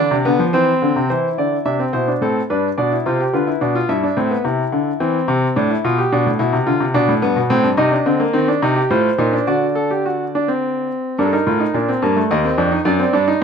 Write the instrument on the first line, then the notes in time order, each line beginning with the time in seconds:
grand piano
Already playing: D3 D4 D5
0.11 C3
0.25 D3 B3
0.39 F3
0.53 E3 C4 C5
0.82 D3
0.96 C3
1.10 E3 E4 C5
1.38 D3 D5
1.66 C3 D4 E5
1.79 C4
1.93 B2 E4 C5
2.08 D4
2.21 A2 C4 A4
2.50 G2 D4 B4
2.78 B2 D4 D5
2.92 E4
3.06 C3 F4 C5
3.20 G4
3.33 D3 F4 B4
3.47 E4
3.61 B2 D4
3.75 F4
3.89 G2 E4 E5
4.03 D4
4.17 A2 C4
4.31 B3
4.45 C3 E4
4.72 D3
5.00 E3 C4
5.28 C3
5.56 A2 D4
5.71 E4
5.84 B2 F4
5.98 G4
6.12 B2 D4
6.26 A2
6.39 B2 E4
6.53 C3
6.67 D3 F4
6.80 C3
6.94 B2 D4
7.08 A2
7.22 G2 B3
7.36 B2
7.50 A2 C4
7.63 G2
7.77 C3 D#4 D#5
7.92 D4
8.06 D3 C4
8.20 A#3
8.33 D#3 C4
8.48 D4
8.62 C3 D#4
8.76 G4
8.90 A2 F4 C5
9.18 A#2 D#4
9.33 D4
9.47 D3 F#4 D5
9.75 A4
9.91 G4
10.06 F#4
10.35 D4
10.48 C4
11.19 G2 D4 A#4
11.26 A4
11.33 D#4 A#4
11.47 A2 F4
11.60 D#4
11.74 A#2 D4
11.89 C4
12.02 G2 A#3
12.17 A3
12.31 D#2 A#3 D#5
12.45 C4
12.58 F2 D4
12.72 D#4
12.85 F#2 D4 D5
13.00 C4
13.13 G2 D4
13.28 D#4